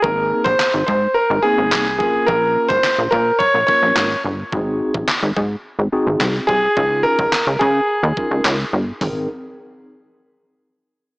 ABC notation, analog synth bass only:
X:1
M:4/4
L:1/16
Q:1/4=107
K:Ab
V:1 name="Analog synth bass" clef=bass
A,,,3 B,,, z A,,, A,,2 z A,,, z A,,, C,,2 B,,,2 | B,,,3 A,,, z B,,, B,,2 z B,,, z B,,, A,,,2 G,,,2 | A,,,3 B,,, z A,,, A,,2 z A,,, z A,,, C,,2 C,,2 | D,,3 D,, z D,, D,2 z E,, z D,, D,,2 G,,,2 |
A,,,2 z12 z2 |]